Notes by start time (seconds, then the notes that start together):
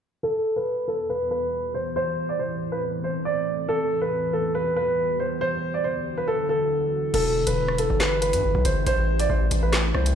0.23 E2 E3 B3 G4 A4
0.56 B4
0.88 A4
1.10 B4
1.31 B4
1.74 C5
1.96 A2 C4 A4 C5
2.29 D5
2.39 C5
2.72 B4
3.04 C5
3.25 D5
3.68 E2 E3 B3 G4 A4
4.02 B4
4.33 A4
4.55 B4
4.76 B4
5.20 C5
5.41 D2 D3 E4 F#4 C5
5.74 D5
5.84 C5
6.18 B4
6.28 A4
6.49 A4
7.14 E1 E3 E4 G4 A4 B4, closed hi-hat, crash
7.47 E1 B4, closed hi-hat
7.68 cross-stick
7.78 A4, closed hi-hat
7.90 G1
8.00 B4, snare, clap, closed hi-hat
8.21 B4, closed hi-hat
8.33 G2, closed hi-hat
8.43 G1
8.55 B1
8.65 G1 C5, closed hi-hat
8.86 A1 A3 C4 C5, closed hi-hat
9.19 D5, closed hi-hat
9.30 A1 C5
9.51 A1, closed hi-hat
9.63 B4
9.73 snare, clap, closed hi-hat
9.94 C2 C5, cross-stick
10.06 closed hi-hat